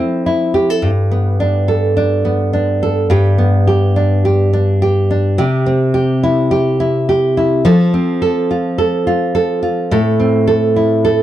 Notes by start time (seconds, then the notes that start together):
Already playing: F3 C4 E4 A4
0.26 E4
0.54 G4
0.70 A4
0.82 G2
1.11 B3
1.40 D4
1.68 A4
1.97 D4
2.25 B3
2.53 D4
2.83 A4
3.10 G2 G4
3.38 B3
3.67 G4
3.96 D4
4.25 G4
4.53 D4
4.82 G4
5.11 D4
5.38 C3 G4
5.66 C4
5.94 G4
6.23 E4
6.51 G4
6.80 E4
7.09 G4
7.37 E4
7.65 F3 A4
7.94 C4
8.22 A4
8.51 F4
8.78 A4
9.07 F4
9.35 A4
9.63 F4
9.91 A2 A4
10.20 C4
10.47 A4
10.76 E4
11.05 A4